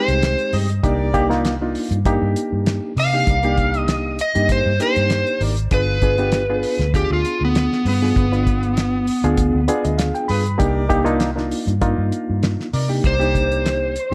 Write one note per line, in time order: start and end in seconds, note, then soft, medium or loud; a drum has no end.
0.00 0.66 G#3 medium
0.00 0.66 C4 medium
0.00 0.66 D#4 medium
0.00 0.66 G4 medium
0.00 0.53 C5 medium
0.08 0.34 C2 medium
0.08 closed hi-hat soft
0.23 snare loud
0.23 closed hi-hat medium
0.38 closed hi-hat soft
0.53 0.79 G2 medium
0.53 0.69 G4 medium
0.53 0.69 G#4 medium
0.53 0.69 D#5 medium
0.53 open hi-hat medium
0.69 closed hi-hat soft
0.83 1.75 C2 medium
0.83 1.08 A#3 medium
0.83 1.09 D4 medium
0.83 1.08 D#4 medium
0.83 1.45 D#4 loud
0.83 1.09 G4 medium
0.83 1.45 A#4 medium
0.83 1.45 D5 loud
0.83 kick loud
0.83 closed hi-hat medium
1.14 1.27 A#3 loud
1.14 1.27 D4 medium
1.14 1.27 D#4 medium
1.14 1.27 G4 loud
1.14 kick medium
1.14 closed hi-hat medium
1.29 1.54 A#3 medium
1.29 1.54 D4 medium
1.29 1.55 D#4 medium
1.29 1.55 F4 loud
1.29 snare soft
1.29 closed hi-hat soft
1.45 snare medium
1.45 closed hi-hat medium
1.61 1.97 A#3 medium
1.61 1.98 D4 medium
1.61 1.98 D#4 medium
1.61 1.98 F4 medium
1.75 open hi-hat medium
1.91 2.17 G2 medium
1.91 closed hi-hat soft
2.05 2.92 A#3 medium
2.05 2.92 D4 medium
2.05 2.92 D#4 medium
2.05 2.92 G4 loud
2.05 kick medium
2.05 closed hi-hat medium
2.22 2.34 G2 medium
2.36 closed hi-hat medium
2.53 2.78 G2 medium
2.66 snare loud
2.66 closed hi-hat medium
2.97 3.23 C3 medium
2.97 3.13 D#4 medium
2.97 3.14 A#4 medium
2.97 3.14 D5 medium
2.97 3.79 F5 loud
2.97 open hi-hat medium
3.13 3.38 A#3 medium
3.13 3.38 D4 medium
3.13 3.38 D#4 medium
3.13 3.38 G4 medium
3.27 4.19 C2 medium
3.27 3.89 A#4 medium
3.27 3.89 D5 medium
3.27 kick loud
3.27 closed hi-hat medium
3.43 4.16 A#3 medium
3.43 4.17 D4 medium
3.43 4.17 D#4 medium
3.43 4.17 G4 medium
3.43 closed hi-hat soft
3.57 kick medium
3.57 closed hi-hat medium
3.74 closed hi-hat soft
3.79 4.17 D#5 loud
3.88 snare loud
3.88 closed hi-hat medium
4.19 4.50 D#5 medium
4.19 closed hi-hat medium
4.35 4.62 G2 medium
4.35 4.71 A#3 medium
4.35 4.72 D4 medium
4.35 4.72 D#4 medium
4.35 4.72 G4 medium
4.35 closed hi-hat soft
4.49 4.80 C5 medium
4.49 kick medium
4.49 closed hi-hat medium
4.66 4.78 G2 medium
4.80 5.54 A#3 medium
4.80 5.54 D4 medium
4.80 5.54 D#4 medium
4.80 5.54 G4 medium
4.80 5.41 C5 medium
4.80 closed hi-hat medium
4.96 5.22 G2 medium
4.96 closed hi-hat soft
5.10 snare medium
5.10 closed hi-hat medium
5.27 closed hi-hat soft
5.41 5.67 G#1 medium
5.41 5.57 D#4 medium
5.41 5.57 A#4 medium
5.41 5.57 D5 medium
5.41 open hi-hat medium
5.57 closed hi-hat soft
5.71 6.63 G1 medium
5.71 5.96 B3 medium
5.71 5.97 D4 medium
5.71 6.33 F4 medium
5.71 5.97 F4 medium
5.71 5.97 G#4 medium
5.71 6.33 G#4 medium
5.71 6.33 B4 medium
5.71 6.91 B4 medium
5.71 kick loud
5.71 closed hi-hat medium
6.02 6.15 B3 medium
6.02 6.15 D4 medium
6.02 6.16 F4 medium
6.02 6.16 G#4 medium
6.02 kick medium
6.02 closed hi-hat medium
6.18 6.42 B3 medium
6.18 6.43 D4 medium
6.18 6.43 F4 medium
6.18 6.43 G4 medium
6.18 closed hi-hat soft
6.32 snare medium
6.32 closed hi-hat medium
6.50 6.86 B3 medium
6.50 6.86 D4 medium
6.50 6.86 F4 medium
6.50 6.86 G#4 medium
6.63 open hi-hat medium
6.79 7.05 D2 medium
6.79 snare soft
6.79 closed hi-hat soft
6.94 7.80 B3 medium
6.94 7.80 D4 medium
6.94 7.80 F4 medium
6.94 7.11 G4 medium
6.94 7.80 G#4 medium
6.94 kick medium
6.94 closed hi-hat medium
7.10 7.22 D2 medium
7.10 7.41 F4 medium
7.25 closed hi-hat medium
7.41 7.67 D2 medium
7.41 7.86 B3 medium
7.55 snare loud
7.55 closed hi-hat medium
7.72 snare soft
7.85 8.11 G2 medium
7.85 9.66 B3 medium
7.85 8.02 F4 medium
7.85 8.02 G#4 medium
7.85 8.02 B4 medium
7.85 open hi-hat medium
8.02 8.26 B3 medium
8.02 8.26 D4 medium
8.02 8.26 F4 medium
8.02 8.26 G#4 medium
8.02 snare soft
8.16 9.08 G1 medium
8.16 8.77 F4 medium
8.16 8.77 G#4 medium
8.16 8.77 B4 medium
8.16 kick loud
8.16 closed hi-hat medium
8.32 9.05 B3 medium
8.32 9.05 D4 medium
8.32 9.05 F4 medium
8.32 9.05 B4 medium
8.32 closed hi-hat soft
8.47 kick medium
8.47 closed hi-hat medium
8.63 closed hi-hat soft
8.77 snare medium
8.77 closed hi-hat medium
9.07 open hi-hat medium
9.24 9.50 D2 medium
9.24 9.60 B3 medium
9.24 9.60 D4 medium
9.24 9.60 F4 medium
9.24 9.60 G#4 loud
9.24 closed hi-hat soft
9.37 kick medium
9.37 closed hi-hat loud
9.55 9.67 D2 medium
9.68 10.42 B3 loud
9.68 10.43 D4 medium
9.68 10.43 F4 medium
9.68 10.43 G#4 loud
9.68 9.83 D5 medium
9.68 closed hi-hat medium
9.84 10.11 D2 medium
9.84 9.98 D#5 medium
9.84 closed hi-hat soft
9.98 10.14 F5 medium
9.98 snare medium
9.98 closed hi-hat medium
10.15 10.28 G5 medium
10.15 closed hi-hat soft
10.28 10.55 G2 medium
10.28 10.46 F4 medium
10.28 10.46 G#4 medium
10.28 10.46 B4 medium
10.28 10.57 B5 medium
10.28 open hi-hat medium
10.46 closed hi-hat soft
10.58 11.52 C2 loud
10.58 10.84 A#3 medium
10.58 10.84 D4 medium
10.58 10.84 D#4 medium
10.58 11.21 D#4 medium
10.58 10.84 G4 loud
10.58 11.21 A#4 medium
10.58 11.21 D5 medium
10.58 kick loud
10.58 closed hi-hat medium
10.89 11.03 A#3 loud
10.89 11.03 D4 medium
10.89 11.03 D#4 loud
10.89 11.03 G4 loud
10.89 kick medium
10.89 closed hi-hat medium
11.04 11.30 A#3 medium
11.04 11.30 D4 medium
11.04 11.30 D#4 medium
11.04 11.30 F4 loud
11.04 closed hi-hat soft
11.20 snare medium
11.20 closed hi-hat medium
11.36 11.73 A#3 medium
11.36 11.73 D4 medium
11.36 11.74 D#4 medium
11.36 11.74 F4 medium
11.36 snare soft
11.51 open hi-hat medium
11.67 11.93 G2 loud
11.67 closed hi-hat soft
11.82 12.68 A#3 loud
11.82 12.68 D4 medium
11.82 12.68 D#4 medium
11.82 12.68 F4 loud
11.82 kick medium
11.82 closed hi-hat medium
11.98 12.10 G2 medium
12.12 closed hi-hat medium
12.30 12.55 G2 medium
12.43 snare loud
12.43 closed hi-hat medium
12.60 snare soft
12.73 13.00 C3 medium
12.73 12.89 D#4 medium
12.73 12.89 A#4 medium
12.73 12.89 D5 medium
12.73 open hi-hat medium
12.89 13.14 A#3 medium
12.89 13.14 D4 medium
12.89 13.14 D#4 medium
12.89 13.14 G4 medium
13.04 13.96 C2 medium
13.04 13.66 A#4 medium
13.04 14.14 C5 medium
13.04 13.66 D5 medium
13.04 kick loud
13.04 closed hi-hat medium
13.19 13.93 A#3 medium
13.19 13.93 D4 medium
13.19 13.93 D#4 medium
13.19 13.93 G4 medium
13.19 closed hi-hat soft
13.35 kick medium
13.35 closed hi-hat medium
13.52 closed hi-hat soft
13.66 snare medium
13.66 closed hi-hat medium
13.96 closed hi-hat medium